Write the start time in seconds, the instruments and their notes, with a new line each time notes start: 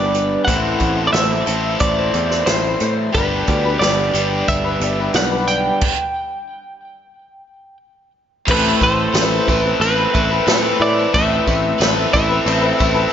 Already playing: picked electric bass G1, overdriven electric guitar G2 D3 G3 B3 D4 G4, twelve-string acoustic guitar G4 B4, clean electric guitar D5
0.00 twelve-string acoustic guitar D4
0.13 twelve-string acoustic guitar G3 D4 G4 B4, closed hi-hat
0.45 picked electric bass A1, overdriven electric guitar A2 E3, twelve-string acoustic guitar A2 E3 A3 E4 C5, clean electric guitar F#5, kick, closed hi-hat
0.49 twelve-string acoustic guitar C4, overdriven electric guitar C4 E4 A4
0.80 picked electric bass A1, kick, closed hi-hat
0.97 twelve-string acoustic guitar A3 C4 E4 C5
1.07 clean electric guitar D5
1.13 picked electric bass A1, twelve-string acoustic guitar A2 E3 A3 C4 E4 C5, clean electric guitar E5, snare, closed hi-hat
1.31 twelve-string acoustic guitar A3 C4 E4 C5
1.46 picked electric bass A1, overdriven electric guitar E3 C4 E4 A4, twelve-string acoustic guitar A3 C4 E4 C5, closed hi-hat
1.51 overdriven electric guitar A2
1.80 picked electric bass A1, clean electric guitar D5, kick, closed hi-hat
1.98 twelve-string acoustic guitar A3 C4 E4 C5
2.14 picked electric bass E2, twelve-string acoustic guitar A3 C4 E4 C5, closed hi-hat
2.30 twelve-string acoustic guitar A3 C4 E4 C5, snare
2.46 picked electric bass A1, twelve-string acoustic guitar A2 E3 A3 C4 E4 C5, clean electric guitar C5, snare, closed hi-hat
2.67 twelve-string acoustic guitar A3 C4 E4 C5
2.80 picked electric bass A2, twelve-string acoustic guitar A3 C4 E4, closed hi-hat
2.84 twelve-string acoustic guitar C5
3.13 picked electric bass G1, overdriven electric guitar G2 D3 G3 B3 D4 G4, twelve-string acoustic guitar G3 D4, clean electric guitar B4, kick, closed hi-hat
3.17 twelve-string acoustic guitar G4 B4
3.47 picked electric bass D2, kick, closed hi-hat
3.65 twelve-string acoustic guitar D4 G4 B4
3.79 picked electric bass G1, twelve-string acoustic guitar G3 D4 G4 B4, clean electric guitar D5, snare, closed hi-hat
4.14 picked electric bass G1, overdriven electric guitar G2 D3 G3 B3 D4 G4, twelve-string acoustic guitar G3 D4 G4 B4, closed hi-hat
4.48 picked electric bass G1, clean electric guitar E5, kick, closed hi-hat
4.64 twelve-string acoustic guitar D4 G4 B4
4.80 picked electric bass G1, twelve-string acoustic guitar G3 D4 G4 B4, closed hi-hat
5.00 twelve-string acoustic guitar D4 G4 B4
5.14 picked electric bass B1, twelve-string acoustic guitar G3 D4 G4 B4, clean electric guitar F#5, snare, closed hi-hat
5.31 twelve-string acoustic guitar D4 G4 B4
5.47 twelve-string acoustic guitar G3 D4 G4 B4, clean electric guitar G5, closed hi-hat
5.81 kick, crash
8.47 picked electric bass A1, overdriven electric guitar A2, twelve-string acoustic guitar A2 E3 A3 C4 A4 B4, accordion C4 A4, kick, crash, tambourine
8.51 clean electric guitar B4
8.81 picked electric bass A1, twelve-string acoustic guitar A3 C4 A4, clean electric guitar C5, kick, tambourine
9.14 picked electric bass A1, twelve-string acoustic guitar A2 E3 A3 C4 A4, overdriven electric guitar B4, snare, tambourine, crash
9.48 picked electric bass A1, twelve-string acoustic guitar A3 C4 A4 B4, overdriven electric guitar E4, clean electric guitar B4, kick, tambourine
9.65 twelve-string acoustic guitar A3 C4 A4 B4
9.80 picked electric bass A1, overdriven electric guitar C4, clean electric guitar B4, tambourine, crash
10.00 twelve-string acoustic guitar A3 C4 A4 B4
10.14 picked electric bass A1, overdriven electric guitar E4, kick, tambourine
10.31 twelve-string acoustic guitar A3 C4 A4 B4
10.47 picked electric bass A2, twelve-string acoustic guitar A2 E3 A3 C4 A4 B4, overdriven electric guitar B4, snare, tambourine, crash
10.53 clean electric guitar A4
10.80 picked electric bass A2, twelve-string acoustic guitar A3 C4 A4 B4, overdriven electric guitar E4, clean electric guitar D5
10.99 twelve-string acoustic guitar A3 C4 A4 B4
11.14 picked electric bass A1, overdriven electric guitar A2, twelve-string acoustic guitar A2 E3 A3 C4 A4 B4, accordion C4 A4, clean electric guitar E5, kick, tambourine, crash
11.47 picked electric bass A1, twelve-string acoustic guitar A3 C4 A4 B4, kick, tambourine
11.80 picked electric bass A1, twelve-string acoustic guitar A2 E3 A3 C4 B4, overdriven electric guitar B4, snare, tambourine, crash
11.84 twelve-string acoustic guitar A4
12.13 picked electric bass A1, twelve-string acoustic guitar A3 C4 A4 B4, overdriven electric guitar E4, clean electric guitar E5, kick, tambourine
12.29 twelve-string acoustic guitar A3 C4 A4 B4
12.46 picked electric bass A1, overdriven electric guitar C4, tambourine, crash
12.61 twelve-string acoustic guitar A3 C4 A4 B4
12.79 picked electric bass A1, overdriven electric guitar E4, kick, tambourine
12.94 twelve-string acoustic guitar A3 C4 A4 B4